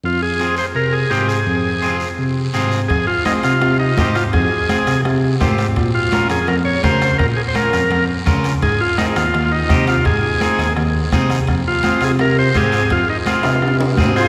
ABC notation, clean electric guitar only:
X:1
M:4/4
L:1/8
Q:1/4=168
K:Fm
V:1 name="Clean electric guitar"
z2 [CFA] z3 [CFA] z | z2 [CFA] z3 [CFA] z | z2 [CFA] z3 [CFG] z | z2 [CFA] z3 [CFG] z |
z2 [DFB] z3 [DFB] z | z2 [DFB] z3 [DFB] z | z2 [CEA] z3 [CEG] z | z2 [CEA] z3 [CEA] z |
z2 [CFA] z3 [CFG] z | z2 [CFA] z3 [CFA] z |]